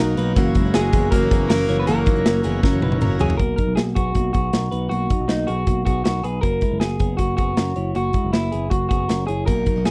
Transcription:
Already playing: F#3 A#3 D#4 F#4 A#4
0.00 B1 A#3 D#4 F#4 A#4
0.17 B1 F#3 A#3 D#4 F#4 B4, closed hi-hat
0.35 F#1 F#2 C#3 E3 A#3 C#4 E4 F#4 A#4, kick, closed hi-hat
0.55 F#1 G#3 E4, kick, closed hi-hat
0.65 E3 A#3 C#4 F#4
0.74 F#1 G#3 A#3 F#4 G#4, snare, closed hi-hat
0.93 F#1 E3 A#3 B3 C#4 F#4 G#4, kick, closed hi-hat
1.11 F#1 A#3 F#4 A#4, kick, closed hi-hat
1.21 E3 A#3 C#4 F#4
1.31 F#1 B3 G#4, kick, closed hi-hat
1.49 F#1 E3 A#3 C#4 F#4 A#4, snare, closed hi-hat
1.68 F#1 E3 A#3 C#4 E4 F#4 C#5, closed hi-hat
1.80 B3 B4
1.87 F#1 F#2 C#3 E3 A#3 C#4 F#4 A#4, closed hi-hat
2.06 F#1 F#3 D#4, kick, closed hi-hat
2.15 E3 A#3 C#4 F#4
2.25 F#1 A#3 F#4, snare, closed hi-hat
2.43 F#1 E3 A#3 B3 C#4 F#4 G#4, closed hi-hat
2.63 F#1 C#4 A#4, kick, snare
2.72 E3 A#3 C#4 F#4
2.82 F#1 D#4 B4, high tom
2.92 high tom
3.01 F#1 E3 A#3 C#4 F#4 A#4, mid tom
3.19 F#1 E3 A#3 C#4 E4 F#4 G#4 C#5, floor tom
3.30 floor tom
3.37 B1 A#3 F#4 A#4, kick, closed hi-hat
3.56 F#3 D#4 A#4, kick, closed hi-hat
3.67 B1
3.76 B1 A#3 F#4 G#4, snare, closed hi-hat
3.95 B1 B3 F#4 G#4, kick, closed hi-hat
4.14 B1 A#3 F#4, kick, closed hi-hat
4.33 B1 B3 F#4 G#4, kick, closed hi-hat
4.53 B1 D#4 A#4, snare, closed hi-hat
4.71 B1 D#4 B4, closed hi-hat
4.89 B1 A#3 F#4, closed hi-hat
5.10 F#3 D#4, kick, closed hi-hat
5.20 B1
5.28 B1 A#3 D#4 F#4, snare, closed hi-hat
5.47 B1 B3 F#4 G#4, closed hi-hat
5.67 B1 A#3 F#4, kick, closed hi-hat
5.85 B1 B3 F#4 G#4, kick, closed hi-hat
6.04 B1 D#4 F#4 A#4, snare, closed hi-hat
6.23 B1 D#4 G#4 B4, closed hi-hat
6.41 F#1 A#3 F#4 A#4, kick, closed hi-hat
6.61 G#3 E4, kick, closed hi-hat
6.71 F#1
6.80 F#1 A#3 F#4 G#4, snare, closed hi-hat
7.00 F#1 B3 G#4, kick, closed hi-hat
7.17 F#1 A#3 F#4, kick, closed hi-hat
7.37 F#1 B3 F#4 G#4, kick, closed hi-hat
7.57 F#1 C#4 A#4, snare, closed hi-hat
7.76 F#1 E4 C#5, closed hi-hat
7.95 F#1 A#3 F#4, closed hi-hat
8.13 G#3 E4, kick, closed hi-hat
8.24 F#1
8.33 F#1 A#3 E4 F#4, snare, closed hi-hat
8.52 F#1 B3 G#4, closed hi-hat
8.70 F#1 A#3 F#4, kick, closed hi-hat
8.89 F#1 B3 F#4 G#4, kick, closed hi-hat
9.08 F#1 C#4 A#4, snare, closed hi-hat
9.27 F#1 E4 G#4 C#5, closed hi-hat
9.46 B1 B2 F#3 A#3 D#4 F#4 A#4, kick, closed hi-hat
9.66 F#3 D#4, kick, closed hi-hat
9.76 B1 A#3 D#4 F#4
9.85 B1 A#3 F#4 G#4, snare, closed hi-hat

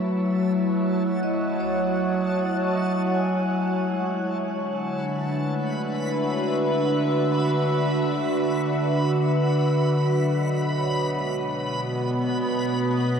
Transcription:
Already playing: F#3 A3 E4 F#4 C#5 A5
0.20 F#5
1.23 D#5
1.60 C#5
2.75 F#3
3.14 G#5
3.91 G#3
4.32 D3 B5
4.52 D4
4.90 F#4 B4 E5
5.46 A3
10.03 F#3
10.41 B2 D#5
10.74 B3
10.79 C#5
11.17 G#3
11.62 D#5
12.10 C#5
12.68 A3

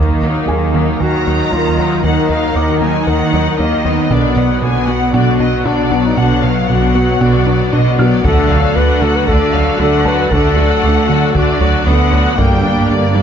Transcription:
Already playing: D#2 D#3 F#3 A#3 D#4 A#4 D#5
0.23 D#2 F#3 D#4
0.47 D#2 D#3 A#3 G#4 G#5
0.74 D#3 F#3 A#3 D#4
1.00 D#2 D#3 A#3 F#4 A#5
1.26 D#2 F#3 D#4
1.52 D#2 D#3 F#3 A#3 F4
1.78 D#2 F#3 D#4 F#5
2.03 D#2 D#3 A#3 D#4 F#5
2.29 D#2 F#3 D#4 F5
2.55 D#2 D#3 A#3 F#5 D6
2.81 D#3 F#3 A#3 D#4 G#5
3.07 D#2 D#3 A#3 D#4 F#5
3.33 D#2 F#3 D#4 D#5
3.58 D#2 D#3 F#3 A#3 D#5
3.85 D#2 F#3 B3 D#4
4.10 B1 B2 D3 F#3 B3 D4 F#4 D5 F#5, taiko
4.36 B2 F#3 B3 D5 F#5
4.62 B1 B2 D3 D4 G#5
4.87 F#3 B3 F#4 F#5
5.13 B1 B2 D3 B3 D4 F#4 D5
5.39 B2 F#3 B3 D4 D#5
5.64 B1 B2 D3 D4 D5
5.91 B2 F#3 B3 D4
6.05 D#4
6.17 B1 B2 D3 B3 D4 F#5
6.43 B2 F#3 B3 F5
6.69 B1 B2 D3 D4 F#4 F#5
6.95 F#3 B3 F#4
7.21 B1 B2 D3 B3 D4 D5
7.46 B2 F#3 B3 D4
7.72 B1 B2 D3 D4 D#5
7.99 B2 F#3 B3 D4 F#4 D5 F6
8.24 D2 D3 A3 D4 F#4 A4 D5 F#5, taiko
8.50 D2 F#3 F#4 F5
8.75 D2 D3 A3 D4 B4 F#5
9.02 D3 F#3 A3 F#4 A4
9.16 B4
9.28 D2 D3 A3 D4 A4 D5, taiko
9.54 D2 F#3 F#4 F5
9.79 D2 D3 F#3 A3 D4 A4 F#5
10.05 D2 F#3 F#4 B4 A5
10.20 B4
10.31 D2 D3 A3 D4 A4 F#5, taiko
10.57 D2 F#3 F#4
10.83 D2 D3 A3 D4
11.09 D3 F#3 A3 F#4
11.34 D2 D3 A3 D4 F#4 D5, taiko
11.60 D2 F#3 F#4
11.86 D2 D3 F#3 A3 B3 D4 F#5
12.12 D2 F#3 F#4
12.38 G1 G2 D3 G3 A#3 D4 G4 D5 G5, taiko
12.64 G2 G3 D4
12.89 G1 G2 D3 A#3 D5
13.15 G3 D4

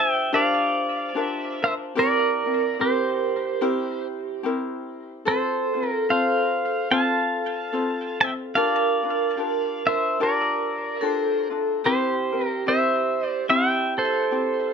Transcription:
Already playing: D4 F4 G4 A#4 C5
0.00 E5 G5
0.32 D4 F4 G4 A#4 D5 F5
1.14 D4 F4 G4 A#4
1.22 E5
1.62 D4 F4 A#4 C5 E5
1.95 C4 E4 G4 A#4 D5
2.45 C4 E4 A#4
2.79 C4 E4 G4 A#4 C5
3.61 C4 E4 G4 A#4
4.43 C4 E4 G4 A#4
5.25 C4 F4 A4 C5
5.73 C4 F4 C5
5.89 A#4
6.09 C4 F4 A4 C5 F5
6.91 C4 F4 A4 C5 F5 A5
7.73 C4 F4 A4 C5
8.21 C4 F4 C5 E5 G5
8.55 D4 F4 G4 A#4 D5 F5
9.03 D4 F4 A#4
9.37 D4 F4 G4 A#4
9.85 D4 F4 A#4 C5 E5
10.20 D4 F4 G4 A#4 D5
10.24 A#4
11.01 D4 F4 G4 A4
11.08 C5
11.50 D4 F4
11.84 C4 E4 G4 A#4 C5
12.32 C4 E4 A#4
12.46 A#4
12.66 C4 E4 G4 A#4 C5 E5
13.28 D5
13.49 C4 E4 G4 E5 G5
13.98 A4 C5
14.31 C4 E4 G4

